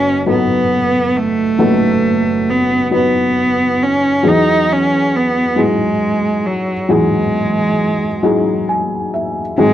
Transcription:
0.00 1.55 F#1 medium
0.00 1.55 F#2 soft
0.00 0.26 F#3 medium
0.00 0.26 B3 medium
0.00 0.25 C#4 medium
0.00 0.26 D#4 medium
0.00 0.27 A4 medium
0.26 1.42 F#3 medium
0.26 1.43 B3 medium
0.26 1.18 B3 medium
0.26 1.43 D#4 medium
0.26 1.43 A4 medium
1.17 2.51 A3 medium
1.58 4.20 F#1 medium
1.58 4.20 F#2 soft
1.58 2.75 F#3 medium
1.58 2.75 B3 medium
1.58 2.75 D#4 medium
1.58 2.75 A4 medium
2.50 2.93 B3 medium
2.91 4.07 F#3 medium
2.91 4.07 B3 soft
2.91 3.85 B3 medium
2.91 4.07 D#4 soft
2.91 4.08 B4 medium
3.83 4.29 C#4 medium
4.23 6.85 E2 medium
4.23 5.39 E3 medium
4.23 5.39 F#3 medium
4.23 5.39 D#4 medium
4.23 5.40 G#4 medium
4.28 4.74 D#4 medium
4.72 5.18 C#4 medium
5.16 5.61 B3 medium
5.56 6.72 F#3 medium
5.56 6.48 G#3 medium
5.56 6.73 D#4 soft
5.56 6.73 E4 medium
5.56 6.73 G#4 medium
6.47 6.94 F#3 medium
6.89 9.53 E2 soft
6.89 8.06 F#3 medium
6.89 8.69 G#3 medium
6.89 8.07 D#4 medium
6.89 8.07 E4 medium
6.89 8.07 G#4 medium
8.23 9.40 F#3 medium
8.23 9.41 D#4 medium
8.23 9.41 E4 medium
8.23 9.41 G#4 medium
8.69 9.10 G#5 medium
9.14 9.55 E5 soft
9.58 9.73 G#1 soft
9.58 9.73 G#2 medium
9.58 9.73 F#3 medium
9.58 9.73 G#3 medium
9.58 9.73 C4 medium
9.58 9.73 D#4 medium
9.58 9.73 G#4 medium

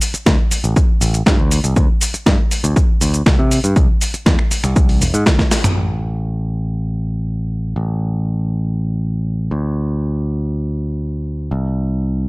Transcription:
0.01 open hi-hat loud
0.01 shaker medium
0.14 muted picked electric bass stroke soft
0.14 closed hi-hat medium
0.14 shaker soft
0.26 0.36 D2 medium
0.26 kick loud
0.26 snare loud
0.26 closed hi-hat medium
0.26 shaker soft
0.51 muted picked electric bass stroke soft
0.51 open hi-hat loud
0.51 shaker medium
0.64 0.74 A1 loud
0.64 closed hi-hat medium
0.64 shaker soft
0.76 kick loud
0.76 closed hi-hat soft
0.76 shaker soft
1.01 1.21 A1 medium
1.01 open hi-hat medium
1.01 shaker medium
1.14 closed hi-hat medium
1.14 shaker soft
1.26 1.36 G2 medium
1.26 kick loud
1.26 snare loud
1.26 closed hi-hat medium
1.26 shaker soft
1.39 1.58 D2 medium
1.51 open hi-hat loud
1.51 shaker medium
1.64 1.74 C2 medium
1.64 closed hi-hat medium
1.64 shaker soft
1.76 1.86 D2 loud
1.76 kick loud
1.76 closed hi-hat soft
1.76 shaker soft
2.01 open hi-hat loud
2.01 shaker medium
2.14 muted picked electric bass stroke soft
2.14 closed hi-hat medium
2.14 shaker soft
2.26 2.36 G2 medium
2.26 kick loud
2.26 snare loud
2.26 closed hi-hat medium
2.26 shaker soft
2.51 open hi-hat loud
2.51 shaker medium
2.64 2.74 D2 loud
2.64 closed hi-hat medium
2.64 shaker soft
2.76 kick loud
2.76 closed hi-hat medium
2.76 shaker soft
3.01 3.21 D2 medium
3.01 open hi-hat loud
3.01 shaker medium
3.14 closed hi-hat medium
3.14 shaker soft
3.26 3.36 C2 medium
3.26 kick loud
3.26 snare loud
3.26 closed hi-hat medium
3.26 shaker soft
3.39 3.58 C3 loud
3.51 open hi-hat loud
3.51 shaker medium
3.64 3.74 G2 medium
3.64 closed hi-hat medium
3.64 shaker soft
3.76 3.86 C2 loud
3.76 kick loud
3.76 closed hi-hat medium
3.76 shaker soft
4.01 open hi-hat loud
4.01 shaker medium
4.14 muted picked electric bass stroke soft
4.14 closed hi-hat medium
4.14 shaker soft
4.26 4.36 E2 medium
4.26 kick loud
4.26 snare loud
4.26 closed hi-hat soft
4.26 shaker soft
4.39 finger snap medium
4.51 muted picked electric bass stroke soft
4.51 open hi-hat loud
4.51 shaker medium
4.64 5.03 C2 medium
4.64 finger snap medium
4.64 closed hi-hat medium
4.64 shaker soft
4.76 kick loud
4.76 closed hi-hat medium
4.76 shaker soft
4.89 open hi-hat medium
5.01 5.11 E1 medium
5.01 open hi-hat loud
5.01 shaker medium
5.14 5.23 G#2 loud
5.14 closed hi-hat medium
5.14 shaker soft
5.26 kick loud
5.26 snare loud
5.26 closed hi-hat medium
5.26 high tom medium
5.26 shaker soft
5.39 kick medium
5.39 snare medium
5.51 snare medium
5.51 open hi-hat loud
5.51 shaker medium
5.64 closed hi-hat medium
5.64 mid tom medium
5.64 shaker soft
5.76 7.74 A1 medium
7.76 9.49 A1 medium
9.51 11.49 D2 medium
11.51 12.29 C2 medium

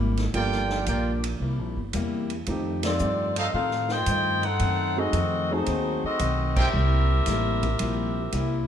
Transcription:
0.00 0.32 G#1 medium
0.00 0.19 C3 medium
0.00 0.19 G3 medium
0.00 0.20 A#3 medium
0.00 0.20 E4 medium
0.17 snare soft
0.17 ride soft
0.33 0.86 G1 medium
0.33 0.72 G2 medium
0.33 1.40 F3 medium
0.33 0.73 F3 medium
0.33 1.41 A#3 medium
0.33 0.73 A#3 medium
0.33 1.41 D4 medium
0.33 0.73 D4 medium
0.33 0.86 F4 medium
0.33 1.41 G4 medium
0.33 1.41 A4 soft
0.33 0.86 A#4 medium
0.33 0.86 D5 medium
0.33 0.86 G5 medium
0.33 ride medium
0.52 snare soft
0.69 snare soft
0.86 1.39 A#1 medium
0.86 1.26 G2 medium
0.86 1.26 F3 medium
0.86 1.26 A#3 medium
0.86 1.26 D4 medium
0.86 1.12 F4 medium
0.86 1.12 A#4 medium
0.86 1.12 D5 medium
0.86 1.12 G5 medium
0.86 hi-hat pedal soft
0.86 ride medium
1.24 ride medium
1.40 1.59 C2 medium
1.40 1.79 C3 medium
1.40 1.79 G3 medium
1.40 1.80 A#3 soft
1.40 1.80 E4 medium
1.59 1.76 A#1 medium
1.76 1.93 G1 medium
1.93 2.46 E2 medium
1.93 2.32 C3 medium
1.93 2.32 G3 medium
1.93 2.32 A#3 medium
1.93 2.33 E4 medium
1.93 hi-hat pedal soft
1.93 ride medium
2.30 ride soft
2.46 2.85 F2 soft
2.46 2.99 F2 medium
2.46 2.86 D#3 medium
2.46 3.97 F3 medium
2.46 3.97 A3 soft
2.46 2.86 A3 medium
2.46 3.98 C4 soft
2.46 2.86 C4 medium
2.46 3.97 D#4 soft
2.46 3.98 G4 medium
2.46 ride medium
2.83 3.34 C4 medium
2.83 3.34 F4 medium
2.83 3.34 A4 medium
2.83 3.34 D5 medium
2.83 snare medium
2.83 ride medium
2.99 3.39 F2 medium
2.99 3.52 G2 medium
2.99 3.39 D#3 medium
2.99 3.39 A3 medium
2.99 3.39 C4 medium
2.99 hi-hat pedal medium
3.36 3.53 C4 medium
3.36 3.48 D#4 medium
3.36 3.53 F4 medium
3.36 3.49 A4 medium
3.36 3.53 A4 medium
3.36 3.48 C5 medium
3.36 3.53 D#5 medium
3.36 3.48 F5 medium
3.36 ride medium
3.53 3.92 F2 soft
3.53 4.05 A2 medium
3.53 3.92 D#3 soft
3.53 3.92 A3 soft
3.53 3.93 C4 medium
3.53 3.88 D#4 medium
3.53 3.88 A4 medium
3.53 3.88 C5 medium
3.53 3.88 F5 medium
3.71 snare soft
3.89 4.44 F4 medium
3.89 4.44 C5 medium
3.89 4.44 D#5 medium
3.89 4.44 G5 loud
3.89 snare soft
4.06 4.45 F2 medium
4.06 4.58 G2 medium
4.06 4.45 D#3 medium
4.06 4.46 A3 medium
4.06 4.46 C4 medium
4.06 hi-hat pedal medium
4.06 ride medium
4.43 4.98 D#4 medium
4.43 4.98 A4 medium
4.43 4.98 C5 medium
4.43 4.98 F#5 loud
4.43 ride soft
4.59 5.12 F#2 medium
4.59 4.99 F#2 soft
4.59 4.99 D#3 soft
4.59 4.99 A3 medium
4.59 5.00 C4 medium
4.59 ride medium
4.96 5.12 F#3 medium
4.96 5.12 A3 medium
4.96 5.12 C4 medium
4.96 5.51 C4 medium
4.96 5.12 D#4 medium
4.96 5.51 F#4 medium
4.96 5.12 G#4 medium
4.96 5.51 A4 medium
4.96 5.51 D#5 medium
5.13 5.65 F2 medium
5.13 5.52 F#2 medium
5.13 5.52 D#3 medium
5.13 5.52 A3 medium
5.13 5.52 C4 medium
5.13 hi-hat pedal soft
5.13 ride medium
5.50 6.17 F#3 medium
5.50 6.17 A3 medium
5.50 6.05 A3 medium
5.50 6.17 C4 medium
5.50 6.18 D#4 medium
5.50 6.05 D#4 medium
5.50 6.05 F#4 medium
5.50 6.18 G#4 medium
5.50 6.04 C5 medium
5.66 6.01 D#2 medium
5.66 6.05 F#2 soft
5.66 6.06 D#3 soft
5.66 6.06 A3 soft
5.66 6.06 C4 medium
5.66 ride medium
6.03 6.55 C4 medium
6.03 6.54 F#4 medium
6.03 6.54 A4 medium
6.03 6.54 D#5 medium
6.03 muted upright bass stroke soft
6.19 6.72 B1 medium
6.19 6.58 F#2 medium
6.19 6.58 D#3 medium
6.19 6.59 A3 medium
6.19 6.59 C4 medium
6.19 hi-hat pedal soft
6.19 ride medium
6.56 8.67 C4 medium
6.56 6.68 E4 medium
6.56 8.67 G4 medium
6.56 6.68 A#4 medium
6.56 8.67 A#4 medium
6.56 6.68 C5 medium
6.56 8.67 E5 medium
6.56 6.68 G5 medium
6.56 kick medium
6.56 crash medium
6.73 7.25 C2 medium
6.73 7.11 C3 soft
6.73 7.12 G3 medium
6.73 7.12 A#3 soft
6.73 7.13 E4 medium
7.26 7.78 A1 medium
7.26 7.65 C3 medium
7.26 7.65 G3 medium
7.26 7.65 A#3 medium
7.26 7.66 E4 medium
7.26 snare soft
7.26 hi-hat pedal medium
7.26 ride medium
7.63 kick medium
7.63 ride soft
7.79 8.31 A#1 medium
7.79 8.18 C3 medium
7.79 8.18 G3 medium
7.79 8.19 A#3 medium
7.79 8.19 E4 medium
7.79 ride medium
8.32 8.67 C2 medium
8.32 8.67 C3 medium
8.32 8.67 G3 medium
8.32 8.67 A#3 medium
8.32 8.67 E4 medium
8.32 hi-hat pedal soft
8.32 ride medium

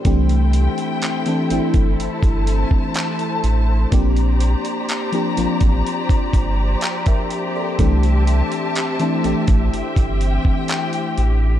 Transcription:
0.00 0.27 C5 medium
0.05 0.68 C2 medium
0.05 0.99 E3 medium
0.05 0.99 A3 medium
0.05 0.99 C4 medium
0.05 0.99 D4 medium
0.05 3.88 E4 medium
0.05 1.00 G4 medium
0.05 3.88 A4 medium
0.05 11.60 C5 medium
0.05 1.97 G5 medium
0.05 kick loud
0.05 closed hi-hat medium
0.29 closed hi-hat soft
0.53 closed hi-hat medium
0.78 closed hi-hat medium
1.02 clap loud
1.02 closed hi-hat medium
1.26 1.45 E3 medium
1.26 1.45 A3 medium
1.26 1.45 C4 medium
1.26 1.46 D4 medium
1.26 1.46 A4 medium
1.26 closed hi-hat soft
1.50 1.60 G1 soft
1.50 3.00 E3 medium
1.50 3.00 A3 medium
1.50 3.00 C4 medium
1.50 3.01 D4 medium
1.50 3.01 E4 medium
1.50 closed hi-hat medium
1.74 1.95 G1 medium
1.74 kick medium
1.74 closed hi-hat medium
1.98 2.08 G1 soft
1.98 3.90 A5 medium
1.98 closed hi-hat medium
2.23 2.65 G1 medium
2.23 kick medium
2.23 closed hi-hat soft
2.47 closed hi-hat medium
2.71 kick medium
2.94 clap loud
2.94 closed hi-hat medium
3.19 closed hi-hat soft
3.44 3.86 A1 medium
3.44 closed hi-hat medium
3.91 4.55 A#1 loud
3.91 4.86 F3 medium
3.91 4.86 A#3 medium
3.91 4.86 C4 medium
3.91 4.86 D4 medium
3.91 11.60 G4 medium
3.91 4.87 G4 medium
3.91 7.75 D5 medium
3.91 7.75 A#5 medium
3.91 kick loud
3.91 closed hi-hat medium
4.16 closed hi-hat soft
4.40 closed hi-hat medium
4.65 closed hi-hat medium
4.89 clap loud
4.89 closed hi-hat medium
5.12 5.31 F3 medium
5.12 5.32 A#3 medium
5.12 5.32 C4 medium
5.12 5.32 D4 medium
5.12 5.33 G4 medium
5.12 closed hi-hat soft
5.37 5.47 A1 soft
5.37 6.87 F3 medium
5.37 6.87 A#3 medium
5.37 6.87 C4 medium
5.37 6.88 D4 medium
5.37 6.88 F4 medium
5.37 closed hi-hat medium
5.61 5.82 A1 medium
5.61 kick medium
5.61 closed hi-hat medium
5.87 closed hi-hat medium
6.09 6.19 G1 soft
6.09 kick loud
6.09 closed hi-hat soft
6.33 6.76 G1 medium
6.33 kick medium
6.33 closed hi-hat medium
6.81 7.06 D5 medium
6.81 7.06 G5 medium
6.81 clap loud
6.81 closed hi-hat medium
7.06 7.53 A#4 medium
7.06 7.53 E5 medium
7.06 kick medium
7.06 closed hi-hat soft
7.30 closed hi-hat medium
7.56 8.02 A4 medium
7.56 8.01 D5 medium
7.78 8.42 C2 medium
7.78 8.73 E3 medium
7.78 8.73 A3 medium
7.78 8.73 C4 medium
7.78 8.73 D4 medium
7.78 8.74 G4 medium
7.78 11.60 E5 medium
7.78 9.71 A5 medium
7.78 kick loud
7.78 closed hi-hat medium
8.03 closed hi-hat soft
8.27 closed hi-hat medium
8.52 closed hi-hat medium
8.75 clap loud
8.75 closed hi-hat medium
8.99 9.19 E3 medium
8.99 9.19 A3 medium
8.99 9.19 C4 medium
8.99 9.19 D4 medium
8.99 9.20 E4 medium
8.99 closed hi-hat soft
9.24 9.34 A1 soft
9.24 10.74 E3 medium
9.24 10.74 A3 medium
9.24 10.75 C4 medium
9.24 10.75 D4 medium
9.24 10.75 G4 medium
9.24 closed hi-hat medium
9.48 9.69 A1 medium
9.48 kick medium
9.48 closed hi-hat medium
9.73 9.82 G1 soft
9.73 11.60 G5 medium
9.73 closed hi-hat medium
9.96 10.39 G1 medium
9.96 kick loud
9.96 closed hi-hat soft
10.21 closed hi-hat medium
10.45 kick medium
10.68 clap loud
10.68 closed hi-hat medium
10.93 closed hi-hat soft
11.18 11.60 A1 loud
11.18 closed hi-hat medium

